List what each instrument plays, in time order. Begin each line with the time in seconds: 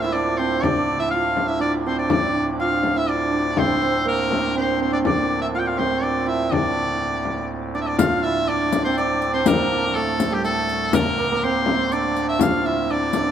Already playing: pipe organ D2 A2, hammered dulcimer A#3 C4 D4 F4
0.01 hammered dulcimer E4, shawm E5
0.13 hammered dulcimer D4, shawm D5
0.38 hammered dulcimer C4, shawm C5
0.63 hammered dulcimer D4, shawm D5, frame drum
0.88 frame drum
1.00 hammered dulcimer E4, shawm E5
1.11 hammered dulcimer F4, shawm F5, frame drum
1.37 frame drum
1.48 hammered dulcimer E4, shawm E5
1.60 hammered dulcimer D4, shawm D5, frame drum
1.87 hammered dulcimer C4, shawm C5, frame drum
1.99 shawm D5
2.10 pipe organ D2 A2, hammered dulcimer D4, shawm D5, frame drum
2.35 frame drum
2.60 hammered dulcimer F4, shawm F5
2.83 frame drum
2.96 hammered dulcimer E4, shawm E5
3.08 hammered dulcimer D4, shawm D5
3.32 hammered dulcimer D4
3.57 hammered dulcimer C4, shawm C5, frame drum
3.82 hammered dulcimer C4, frame drum
4.05 hammered dulcimer A#3, shawm A#4
4.30 hammered dulcimer A#3, frame drum
4.56 hammered dulcimer C4, shawm C5
4.80 hammered dulcimer C4, shawm C5
4.92 hammered dulcimer D4, shawm D5
5.05 hammered dulcimer D4, shawm D5, frame drum
5.30 frame drum
5.42 shawm E5
5.55 hammered dulcimer F4, shawm F5 G5
5.66 hammered dulcimer F4, shawm F5
5.78 hammered dulcimer C4, shawm C5, frame drum
6.02 hammered dulcimer D4, shawm D5
6.26 hammered dulcimer E4, shawm E5
6.52 hammered dulcimer D4, shawm D5, frame drum
7.02 frame drum
7.25 frame drum
7.75 hammered dulcimer D4, shawm D5
7.81 shawm E5
7.87 shawm D5
7.99 pipe organ D2 A2, hammered dulcimer F4, shawm F5, riq, frame drum
8.23 hammered dulcimer E4, shawm E5
8.48 hammered dulcimer D4, shawm D5, frame drum
8.72 riq, frame drum
8.84 hammered dulcimer C4, shawm C5
8.97 hammered dulcimer D4, shawm D5, riq
9.22 riq, frame drum
9.34 hammered dulcimer C4, shawm C5
9.46 hammered dulcimer A#3, shawm A#4, riq, frame drum
9.95 hammered dulcimer A3, shawm A4, frame drum
10.20 riq, frame drum
10.31 hammered dulcimer G3, shawm G4
10.44 hammered dulcimer A3, shawm A4, riq
10.69 riq, frame drum
10.93 hammered dulcimer A#3, shawm A#4, riq, frame drum
11.18 hammered dulcimer A#3
11.25 hammered dulcimer A#3
11.32 hammered dulcimer A#3
11.43 hammered dulcimer C4, shawm C5, frame drum
11.66 hammered dulcimer C4, frame drum
11.92 hammered dulcimer D4, shawm D5, riq
12.16 riq, frame drum
12.29 shawm E5
12.39 hammered dulcimer F4, shawm F5, riq, frame drum
12.66 hammered dulcimer E4, shawm E5
12.91 hammered dulcimer D4, shawm D5
13.13 hammered dulcimer D4, riq, frame drum